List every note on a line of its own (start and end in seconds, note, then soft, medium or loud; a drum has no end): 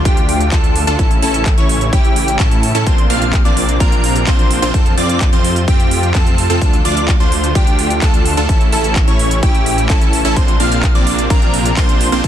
0.00 0.97 D3 medium
0.00 0.97 F3 medium
0.00 0.97 A3 medium
0.00 0.97 F4 medium
0.00 impact medium
0.05 0.50 D2 medium
0.05 0.49 D4 loud
0.05 0.49 F4 medium
0.05 0.49 G4 loud
0.05 0.49 G5 loud
0.05 kick loud
0.05 closed hi-hat medium
0.17 closed hi-hat soft
0.29 open hi-hat loud
0.41 closed hi-hat soft
0.52 0.85 D2 loud
0.52 0.85 D4 loud
0.52 0.85 F4 medium
0.52 0.85 A4 loud
0.52 0.85 A5 loud
0.52 kick loud
0.52 clap loud
0.52 closed hi-hat medium
0.64 closed hi-hat soft
0.76 open hi-hat loud
0.87 0.97 D2 loud
0.87 0.97 D4 loud
0.87 0.97 F4 medium
0.87 0.97 A4 loud
0.87 0.97 A5 loud
0.87 closed hi-hat soft
0.99 1.20 A1 loud
0.99 2.85 C#3 medium
0.99 2.85 E3 medium
0.99 2.85 A3 medium
0.99 1.20 C#4 medium
0.99 2.85 E4 medium
0.99 1.20 E4 medium
0.99 1.20 A4 medium
0.99 1.20 A5 loud
0.99 kick loud
0.99 closed hi-hat medium
1.11 closed hi-hat soft
1.22 1.55 A1 loud
1.22 1.55 C#4 loud
1.22 1.55 E4 medium
1.22 1.55 A4 loud
1.22 1.55 A5 loud
1.22 open hi-hat loud
1.34 closed hi-hat soft
1.46 kick loud
1.46 clap loud
1.46 closed hi-hat medium
1.58 1.90 A1 medium
1.58 1.90 C#4 medium
1.58 1.90 E4 medium
1.58 1.90 C#5 medium
1.58 1.90 C#6 medium
1.58 closed hi-hat soft
1.69 open hi-hat loud
1.81 closed hi-hat soft
1.93 2.37 A1 medium
1.93 2.37 C#4 loud
1.93 2.37 E4 medium
1.93 2.37 G4 loud
1.93 2.37 G5 loud
1.93 kick loud
1.93 closed hi-hat medium
2.05 closed hi-hat soft
2.16 open hi-hat loud
2.28 closed hi-hat soft
2.40 2.72 A2 loud
2.40 2.72 C#4 loud
2.40 2.72 E4 medium
2.40 2.72 A4 loud
2.40 2.72 A5 loud
2.40 kick loud
2.40 clap loud
2.40 closed hi-hat medium
2.51 closed hi-hat soft
2.63 open hi-hat loud
2.75 2.84 A2 loud
2.75 2.85 C#4 loud
2.75 2.85 E4 loud
2.75 2.85 A4 loud
2.75 2.85 A5 loud
2.75 closed hi-hat soft
2.87 3.08 A#1 loud
2.87 6.58 C3 medium
2.87 8.45 F3 medium
2.87 3.07 A#3 medium
2.87 4.72 A#3 medium
2.87 3.07 C4 medium
2.87 3.07 D4 medium
2.87 4.72 D4 medium
2.87 3.07 F4 medium
2.87 3.07 C5 medium
2.87 3.07 C6 medium
2.87 kick loud
2.87 closed hi-hat medium
2.98 closed hi-hat soft
3.10 3.43 A#1 loud
3.10 3.42 A#3 loud
3.10 3.42 C4 medium
3.10 3.42 D4 medium
3.10 3.42 F4 medium
3.10 3.42 F5 loud
3.10 3.42 F6 loud
3.10 open hi-hat loud
3.22 closed hi-hat soft
3.33 kick loud
3.33 clap loud
3.33 closed hi-hat medium
3.45 3.78 A#1 loud
3.45 3.78 A#3 medium
3.45 3.77 C4 medium
3.45 3.78 D4 medium
3.45 3.77 F4 medium
3.45 3.77 D5 medium
3.45 3.78 D6 medium
3.45 closed hi-hat soft
3.57 open hi-hat loud
3.69 closed hi-hat soft
3.80 4.25 A#1 medium
3.80 4.24 A#3 loud
3.80 4.24 C4 loud
3.80 4.24 D4 medium
3.80 4.24 F4 medium
3.80 4.24 A#4 loud
3.80 4.24 A#5 loud
3.80 kick loud
3.80 closed hi-hat medium
3.92 closed hi-hat soft
4.04 open hi-hat loud
4.16 closed hi-hat soft
4.27 4.60 A#1 loud
4.27 4.60 A#3 loud
4.27 4.60 C4 medium
4.27 4.60 D4 loud
4.27 4.60 F4 medium
4.27 4.60 C5 loud
4.27 4.60 C6 loud
4.27 kick loud
4.27 clap loud
4.27 closed hi-hat medium
4.39 closed hi-hat soft
4.51 open hi-hat loud
4.62 4.72 A#1 loud
4.62 4.72 A#3 loud
4.62 4.72 C4 medium
4.62 4.72 D4 medium
4.62 4.72 F4 medium
4.62 4.72 C5 loud
4.62 4.72 C6 loud
4.62 closed hi-hat soft
4.74 4.95 F2 loud
4.74 10.33 A3 medium
4.74 4.95 C4 medium
4.74 4.95 F4 medium
4.74 8.45 F4 medium
4.74 4.95 A4 loud
4.74 4.95 A5 medium
4.74 kick loud
4.74 closed hi-hat medium
4.86 closed hi-hat soft
4.97 5.30 F2 medium
4.97 5.30 C4 loud
4.97 5.30 F4 medium
4.97 5.30 D5 loud
4.97 5.30 D6 loud
4.97 open hi-hat loud
5.09 closed hi-hat soft
5.21 kick loud
5.21 clap loud
5.21 closed hi-hat medium
5.33 5.65 F2 loud
5.33 5.65 C4 medium
5.33 5.65 F4 medium
5.33 5.65 C5 medium
5.33 5.65 C6 medium
5.33 closed hi-hat soft
5.44 open hi-hat loud
5.56 closed hi-hat soft
5.68 6.12 F2 loud
5.68 6.12 C4 loud
5.68 6.12 F4 medium
5.68 6.12 G4 loud
5.68 6.12 G5 loud
5.68 kick loud
5.68 closed hi-hat medium
5.80 closed hi-hat soft
5.91 open hi-hat loud
6.03 closed hi-hat soft
6.15 6.47 F2 loud
6.15 6.47 C4 loud
6.15 6.47 F4 medium
6.15 6.47 A4 loud
6.15 6.47 A5 loud
6.15 kick loud
6.15 clap loud
6.15 closed hi-hat medium
6.27 closed hi-hat soft
6.38 open hi-hat loud
6.50 6.59 F2 loud
6.50 6.60 C4 loud
6.50 6.60 F4 loud
6.50 6.60 A4 loud
6.50 6.60 A5 loud
6.50 closed hi-hat soft
6.61 6.83 D2 loud
6.61 8.47 D3 medium
6.61 6.82 D4 medium
6.61 6.82 A4 loud
6.61 6.82 A5 loud
6.61 kick loud
6.61 closed hi-hat medium
6.73 closed hi-hat soft
6.85 7.18 D2 loud
6.85 7.17 D4 loud
6.85 7.17 F4 medium
6.85 7.17 D5 loud
6.85 7.17 D6 loud
6.85 open hi-hat loud
6.97 closed hi-hat soft
7.08 kick loud
7.08 clap loud
7.08 closed hi-hat medium
7.20 7.53 D2 loud
7.20 7.52 D4 medium
7.20 7.53 F4 medium
7.20 7.53 C5 medium
7.20 7.53 C6 medium
7.20 closed hi-hat soft
7.32 open hi-hat loud
7.44 closed hi-hat soft
7.55 8.00 D2 medium
7.55 7.99 D4 loud
7.55 7.99 F4 medium
7.55 7.99 G4 loud
7.55 7.99 G5 loud
7.55 kick loud
7.55 closed hi-hat medium
7.67 closed hi-hat soft
7.79 open hi-hat loud
7.90 closed hi-hat soft
8.02 8.35 D2 loud
8.02 8.35 D4 loud
8.02 8.35 F4 medium
8.02 8.35 A4 loud
8.02 8.35 A5 loud
8.02 kick loud
8.02 clap loud
8.02 closed hi-hat medium
8.14 closed hi-hat soft
8.26 open hi-hat loud
8.37 8.47 D2 medium
8.37 8.47 D4 loud
8.37 8.47 F4 loud
8.37 8.47 A4 loud
8.37 8.47 A5 loud
8.37 closed hi-hat soft
8.49 8.70 A1 loud
8.49 10.35 C#3 medium
8.49 10.35 E3 medium
8.49 8.70 C#4 medium
8.49 10.35 E4 medium
8.49 8.70 E4 medium
8.49 8.70 A4 loud
8.49 8.70 A5 loud
8.49 kick loud
8.49 closed hi-hat medium
8.61 closed hi-hat soft
8.72 9.05 A1 medium
8.72 9.05 C#4 loud
8.72 9.05 E4 medium
8.72 9.05 A4 loud
8.72 9.05 A5 loud
8.72 open hi-hat loud
8.84 closed hi-hat soft
8.96 kick loud
8.96 clap loud
8.96 closed hi-hat medium
9.08 9.40 A1 loud
9.08 9.40 C#4 medium
9.08 9.40 E4 medium
9.08 9.40 C#5 medium
9.08 9.40 C#6 medium
9.08 closed hi-hat soft
9.19 open hi-hat loud
9.31 closed hi-hat soft
9.43 9.87 A1 medium
9.43 9.87 C#4 loud
9.43 9.87 E4 medium
9.43 9.87 G4 loud
9.43 9.87 G5 loud
9.43 kick loud
9.43 closed hi-hat medium
9.55 closed hi-hat soft
9.66 open hi-hat loud
9.78 closed hi-hat soft
9.89 10.22 A1 loud
9.89 10.22 C#4 loud
9.89 10.22 E4 medium
9.89 10.22 A4 loud
9.89 10.22 A5 loud
9.89 kick loud
9.89 clap loud
9.89 closed hi-hat medium
10.01 closed hi-hat soft
10.13 open hi-hat loud
10.25 10.34 A1 loud
10.25 10.35 C#4 loud
10.25 10.35 E4 loud
10.25 10.35 A4 loud
10.25 10.35 A5 loud
10.25 closed hi-hat soft
10.36 10.58 A#1 loud
10.36 12.28 C3 medium
10.36 12.28 F3 medium
10.36 12.22 A#3 medium
10.36 10.57 A#3 medium
10.36 10.57 C4 medium
10.36 12.22 D4 medium
10.36 10.57 D4 medium
10.36 10.57 F4 medium
10.36 10.57 C5 loud
10.36 10.57 C6 loud
10.36 kick loud
10.36 closed hi-hat medium
10.48 closed hi-hat soft
10.60 10.93 A#1 loud
10.60 10.92 A#3 loud
10.60 10.92 C4 medium
10.60 10.92 D4 medium
10.60 10.92 F4 medium
10.60 10.92 F5 loud
10.60 10.92 F6 loud
10.60 open hi-hat loud
10.72 closed hi-hat soft
10.83 kick loud
10.83 clap loud
10.83 closed hi-hat medium
10.95 11.28 A#1 loud
10.95 11.28 A#3 medium
10.95 11.27 C4 medium
10.95 11.27 D4 medium
10.95 11.27 F4 medium
10.95 11.27 D5 medium
10.95 11.28 D6 medium
10.95 closed hi-hat soft
11.07 open hi-hat loud
11.19 closed hi-hat soft
11.30 11.75 A#1 medium
11.30 11.74 A#3 loud
11.30 11.74 C4 loud
11.30 11.74 D4 medium
11.30 11.74 F4 medium
11.30 11.74 A#4 loud
11.30 11.74 A#5 loud
11.30 kick loud
11.30 closed hi-hat medium
11.42 closed hi-hat soft
11.54 open hi-hat loud
11.65 closed hi-hat soft
11.77 12.10 A#1 loud
11.77 12.10 A#3 loud
11.77 12.10 C4 loud
11.77 12.10 D4 loud
11.77 12.10 F4 medium
11.77 12.10 C5 loud
11.77 12.10 C6 loud
11.77 kick loud
11.77 clap loud
11.77 closed hi-hat medium
11.89 closed hi-hat soft
12.01 open hi-hat loud
12.12 12.22 A#1 medium
12.12 12.22 A#3 loud
12.12 12.22 C4 medium
12.12 12.22 D4 medium
12.12 12.22 F4 medium
12.12 12.22 C5 loud
12.12 12.22 C6 loud
12.12 closed hi-hat soft
12.24 12.28 F2 loud
12.24 12.28 A3 medium
12.24 12.28 F4 medium
12.24 12.28 A4 medium
12.24 12.28 A5 loud
12.24 kick loud
12.24 closed hi-hat medium